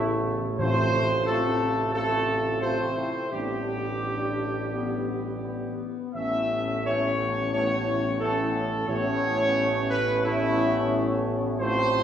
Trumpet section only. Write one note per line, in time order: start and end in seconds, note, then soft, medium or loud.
0.00 0.21 E4 medium
0.59 1.22 C5 loud
1.26 1.90 A4 medium
1.94 2.58 A4 medium
2.62 3.28 C5 medium
3.31 5.75 G4 medium
6.15 6.80 E5 medium
6.86 7.49 C#5 medium
7.53 8.17 C#5 medium
8.20 8.85 A4 medium
8.88 9.90 C#5 medium
9.90 10.22 B4 medium
10.24 11.22 E4 medium
11.59 12.03 C5 loud